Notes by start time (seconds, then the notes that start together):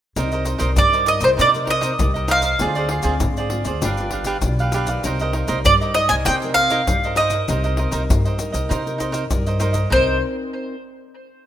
0.16 C2 C4 D#4 A#4 C5 D5 D#5, pandeiro, maracas, surdo
0.32 A#4 C5 D#5, pandeiro, maracas
0.45 D#4 A#4 C5 D#5, pandeiro, maracas
0.58 C2 D#4 A#4 C5 D5 D#5, pandeiro, maracas, surdo
0.76 G2 G3 D5, pandeiro, maracas, surdo
0.93 A#4 C5 D#5, pandeiro, maracas
1.06 D#4 A#4 D5 D#5, pandeiro, maracas
1.21 C2 A#4 C5 D#5, pandeiro, maracas, surdo
1.37 C3 C4 D#4 A#4 C5 D#5, pandeiro, maracas, surdo
1.41 D5
1.54 D#4 A#4 D5, pandeiro, maracas
1.65 D#4 A#4 C5 D#5, pandeiro, surdo
1.70 D#5
1.81 D#4 A#4 C5 D#5, pandeiro, maracas
1.99 C2 G3 D#4 A#4, pandeiro, maracas, surdo
2.14 A#4 C5 D#5, pandeiro, maracas, surdo
2.28 D#4 A#4 C5 D#5 F5, pandeiro, maracas
2.42 A#4 C5 D#5, pandeiro, maracas, surdo
2.59 D2 D3 C4 F4 G#4 C5 D5, pandeiro, maracas, surdo
2.75 G#4 C5 D5, pandeiro, maracas
2.89 F4 G#4 C5 D5, pandeiro
3.03 D2 C4 F4 G#4 C5 D5, pandeiro, maracas, surdo
3.20 G#2 D3, pandeiro, maracas, surdo
3.37 G#4 C5 D5, pandeiro, maracas
3.50 C4 F4 G#4, pandeiro
3.65 D2 G#4 C5 D5, pandeiro, maracas, surdo
3.82 G1 G3 D4 F4 G4 B4 D5 F5, pandeiro, maracas, surdo
3.97 F4 B4 D5, pandeiro, maracas
4.11 D4 G4 B4 F5, pandeiro, surdo
4.24 D4 G4 B4 F5, pandeiro, maracas
4.42 B1 D3 F4 B4, pandeiro, maracas, surdo
4.46 D5
4.59 G4 B4 F5, pandeiro, maracas, surdo
4.72 D4 G4 B4 F5, pandeiro, maracas
4.87 D#4 G4 A#4 B4 D5 F5, pandeiro, maracas, surdo
5.04 C2 C4 D#4 A#4 C5 D#5, pandeiro, maracas, surdo
5.19 A#4 C5 D#5, pandeiro, maracas
5.33 D#4 A#4 C5 D#5, pandeiro
5.48 C2 D#4 A#4 C5 D5 D#5, pandeiro, maracas, surdo
5.65 G2 G3 D5, pandeiro, maracas, surdo
5.81 A#4 C5 D#5, pandeiro, maracas
5.94 D#4 A#4 D5 D#5, pandeiro
6.09 C2 A#4 C5 D#5 G#5, pandeiro, maracas, surdo
6.25 C3 C4 D#4 A#4 C5 D#5 G5, pandeiro, maracas, surdo
6.42 D#4 A#4 D5, pandeiro, maracas
6.54 D#4 A#4 C5 D#5 F5, pandeiro, surdo
6.70 D#4 A#4 C5 D#5, pandeiro, maracas
6.87 G2 G3 D#4 A#4 D5, pandeiro, maracas, surdo
7.04 A#4 C5 D#5, pandeiro, maracas, surdo
7.16 D#4 A#4 C5 D5 D#5, pandeiro, maracas
7.30 C5 D#5, pandeiro, maracas, surdo
7.34 A#4
7.48 C2 C4 D#4 A#4 C5 D#5, pandeiro, maracas, surdo
7.64 A#4 C5 D#5, pandeiro, maracas
7.77 D#4 A#4 C5 D#5, pandeiro
7.91 C2 D#4 A#4 C5 D#5, pandeiro, maracas, surdo
8.10 G2 G3, pandeiro, maracas, surdo
8.25 A#4 C5 D#5, pandeiro, maracas
8.39 D#4 A#4, pandeiro, maracas
8.52 C2 A#4 C5 D#5, pandeiro, maracas, surdo
8.69 C3 C4 D#4 A#4 C5 D#5, pandeiro, maracas, surdo
8.86 D#4 A#4, pandeiro, maracas
8.98 D#4 A#4 C5 D#5, pandeiro, maracas, surdo
9.12 D#4 A#4 C5 D#5, pandeiro, maracas
9.31 G2 G3 D#4 A#4 D5, pandeiro, maracas, surdo
9.47 A#4 C5 D#5, pandeiro, maracas
9.60 D#4 A#4 C5 D5 D#5, pandeiro, maracas
9.73 A#4 C5 D#5, pandeiro, maracas, surdo
9.90 C2 C4 D#4 A#4 C5 D#5, surdo
9.94 A#4 D5